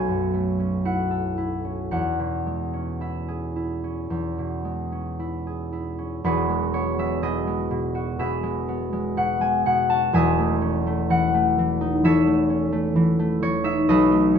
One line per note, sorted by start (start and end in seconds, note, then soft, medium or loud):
0.00 1.97 B1 soft
0.00 0.33 A3 soft
0.00 0.58 C#4 soft
0.00 1.97 F#4 soft
0.00 1.09 A4 soft
0.00 1.42 C#5 medium
0.00 0.84 F#5 medium
0.00 1.60 G#5 medium
0.08 1.97 F#2 soft
0.34 1.97 A3 soft
0.60 1.63 C#4 soft
0.85 1.36 E4 soft
0.85 1.90 F#5 medium
1.11 1.97 A4 soft
1.38 3.00 E4 soft
1.65 2.72 C#4 soft
1.91 4.09 E2 soft
1.91 5.81 F#5 medium
2.19 4.37 B2 soft
2.46 4.63 G#3 soft
2.74 3.83 C#4 soft
3.01 3.55 E4 soft
3.01 6.91 E5 soft
3.28 5.45 G#4 soft
3.56 5.18 E4 soft
3.84 4.91 C#4 soft
4.10 6.23 E2 soft
4.38 6.29 B2 soft
4.65 6.48 G#3 soft
4.92 5.97 C#4 soft
5.19 5.71 E4 soft
5.47 6.25 G#4 soft
5.72 9.62 E4 soft
5.99 6.28 C#4 soft
6.24 10.12 E1 medium
6.24 10.13 E2 medium
6.24 7.94 F#4 medium
6.24 7.22 G#4 medium
6.24 7.22 B4 medium
6.49 6.98 G#3 soft
6.74 8.67 B3 soft
6.74 7.16 C#5 medium
6.99 7.46 G#3 soft
6.99 7.40 E5 medium
7.22 7.70 B2 soft
7.22 8.19 G#4 medium
7.22 8.19 B4 medium
7.22 8.89 D#5 medium
7.47 8.42 G#3 soft
7.71 8.18 B2 soft
7.95 9.89 F#4 soft
8.19 9.16 B2 soft
8.19 12.10 G#4 medium
8.19 10.19 B4 medium
8.19 10.14 E5 medium
8.43 8.91 G#3 soft
8.68 10.19 B3 soft
8.93 9.40 G#3 soft
9.17 9.65 B2 medium
9.17 9.59 F#5 medium
9.41 13.32 G#3 soft
9.41 9.83 G#5 medium
9.66 10.19 B2 medium
9.66 10.19 F#5 medium
9.90 10.19 F#4 medium
9.90 10.32 A5 medium
10.13 13.91 E1 medium
10.13 13.92 E2 medium
10.13 13.87 D#5 medium
10.13 12.03 E5 medium
10.13 13.92 G#5 loud
10.38 10.85 A3 medium
10.62 12.48 C#4 medium
10.87 11.33 A3 medium
11.10 11.57 E3 medium
11.10 12.69 F#5 loud
11.34 12.26 A3 medium
11.58 12.03 E3 medium
11.81 13.63 D#4 medium
12.04 12.94 E3 medium
12.04 13.89 A4 medium
12.04 13.41 C#5 medium
12.04 13.63 E5 loud
12.27 12.71 A3 medium
12.50 14.34 C#4 medium
12.72 13.18 A3 medium
12.96 13.41 E3 medium
13.19 14.10 A3 medium
13.42 13.93 E3 medium
13.42 14.39 C#5 loud
13.64 14.39 D#4 medium
13.64 14.05 E5 loud
13.89 14.39 B1 medium
13.89 14.39 A4 medium
13.89 14.39 B4 medium
13.89 14.39 D#5 loud
14.11 14.39 A3 medium
14.35 14.39 C#4 medium